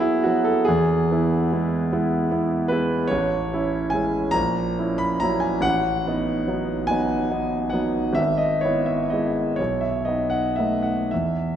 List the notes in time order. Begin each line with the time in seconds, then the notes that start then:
Already playing: F#3 B3 F#4 G#4
0.00 E4
0.23 F#3 B3 F#4
0.45 A4
0.65 E2 G#4
1.11 B3 E4
1.52 G#3 B3 E4
1.93 G#3 B3 E4
2.31 B3 E4
2.68 G#3 B3 B4
2.72 E4
3.08 A1 C#5
3.53 C#4 E4
3.90 G#3 C#4 E4 G#5
4.31 A#1 A#5
4.78 C#4 E4
4.98 B5
5.20 F#3 C#4 E4 A#5
5.40 G#5
5.61 A1 F#5
6.07 B3 D#4
6.47 F#3 B3 D#4
6.87 F#3 B3 D#4 G#5
7.31 B3 D#4
7.70 F#3 B3 F#5
7.74 D#4
8.13 G#1 E5
8.38 D#5
8.61 B3 E4 C#5
8.86 E5
9.10 G#3 B3 E4 D#5
9.56 B1 C#5
9.81 E5
10.05 B3 D#4 D#5
10.30 F#5
10.56 A3 B3 D#4 E5
10.83 F#5
11.11 E2 E5